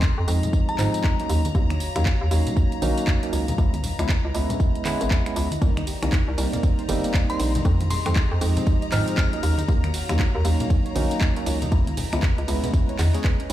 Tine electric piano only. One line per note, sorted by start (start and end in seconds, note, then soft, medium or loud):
0.28 0.76 F3 medium
0.28 0.76 G#3 medium
0.28 0.76 C4 medium
0.28 0.76 D#4 medium
0.79 1.16 F3 loud
0.79 1.16 G#3 medium
0.79 1.16 C4 medium
0.79 1.16 D#4 loud
1.19 1.41 F#3 medium
1.19 1.41 A#3 medium
1.19 1.41 C#4 medium
1.19 1.41 D#4 medium
1.55 1.71 F#3 medium
1.55 1.71 A#3 medium
1.55 1.71 C#4 medium
1.55 1.71 D#4 medium
1.96 2.07 F#3 medium
1.96 2.07 A#3 medium
1.96 2.07 C#4 medium
1.96 2.07 D#4 loud
2.31 2.80 F#3 medium
2.31 2.80 A#3 medium
2.31 2.80 C#4 medium
2.31 2.80 D#4 medium
2.82 3.19 F#3 loud
2.82 3.19 A#3 medium
2.82 3.19 C#4 medium
2.82 3.19 D#4 loud
3.23 3.45 F#3 medium
3.23 3.45 A#3 medium
3.23 3.45 C#4 medium
3.23 3.45 D#4 medium
3.58 3.75 G#3 medium
3.58 3.75 B3 medium
3.58 3.75 C#4 medium
3.58 3.75 E4 medium
3.99 4.11 G#3 medium
3.99 4.11 B3 medium
3.99 4.11 C#4 medium
3.99 4.11 E4 medium
4.34 4.83 G#3 medium
4.34 4.83 B3 medium
4.34 4.83 C#4 medium
4.34 4.83 E4 medium
4.85 5.23 G#3 loud
4.85 5.23 B3 medium
4.85 5.23 C#4 medium
4.85 5.23 E4 loud
5.26 5.48 G#3 medium
5.26 5.48 B3 medium
5.26 5.48 C#4 medium
5.26 5.48 E4 medium
5.62 5.78 G3 medium
5.62 5.78 A#3 medium
5.62 5.78 C4 medium
5.62 5.78 D#4 medium
6.02 6.14 G3 medium
6.02 6.14 A#3 medium
6.02 6.14 C4 medium
6.02 6.14 D#4 medium
6.38 6.86 G3 medium
6.38 6.86 A#3 medium
6.38 6.86 C4 medium
6.38 6.87 D#4 medium
6.89 7.26 G3 loud
6.89 7.26 A#3 medium
6.89 7.26 C4 medium
6.89 7.26 D#4 loud
7.30 7.51 G3 medium
7.30 7.51 A#3 medium
7.30 7.51 C4 medium
7.30 7.51 D#4 medium
7.65 7.81 F3 medium
7.65 7.82 G#3 medium
7.65 7.82 C4 medium
7.65 7.82 D#4 medium
8.06 8.17 F3 medium
8.06 8.17 G#3 medium
8.06 8.17 C4 medium
8.06 8.18 D#4 medium
8.41 8.90 F3 medium
8.41 8.90 G#3 medium
8.41 8.90 C4 medium
8.41 8.90 D#4 medium
8.92 9.29 F3 loud
8.92 9.29 G#3 medium
8.92 9.29 C4 medium
8.92 9.29 D#4 loud
9.33 9.55 F#3 medium
9.33 9.55 A#3 medium
9.33 9.55 C#4 medium
9.33 9.55 D#4 medium
9.68 9.85 F#3 medium
9.68 9.85 A#3 medium
9.68 9.85 C#4 medium
9.68 9.85 D#4 medium
10.09 10.21 F#3 medium
10.09 10.21 A#3 medium
10.09 10.21 C#4 medium
10.09 10.21 D#4 medium
10.45 10.93 F#3 medium
10.45 10.93 A#3 medium
10.45 10.93 C#4 medium
10.45 10.93 D#4 medium
10.95 11.33 F#3 loud
10.95 11.33 A#3 medium
10.95 11.33 C#4 medium
10.95 11.33 D#4 loud
11.36 11.58 F#3 medium
11.36 11.58 A#3 medium
11.36 11.58 C#4 medium
11.36 11.58 D#4 medium
11.72 11.88 G#3 medium
11.72 11.88 B3 medium
11.72 11.88 C#4 medium
11.72 11.88 E4 medium
12.13 12.24 G#3 medium
12.13 12.24 B3 medium
12.13 12.24 C#4 medium
12.13 12.24 E4 loud
12.48 12.97 G#3 medium
12.48 12.97 B3 medium
12.48 12.97 C#4 medium
12.48 12.97 E4 medium
13.14 13.36 G#3 medium
13.14 13.36 B3 medium
13.14 13.36 C#4 medium
13.14 13.36 G#4 medium
13.50 13.53 G#3 medium
13.50 13.53 B3 medium
13.50 13.53 C#4 medium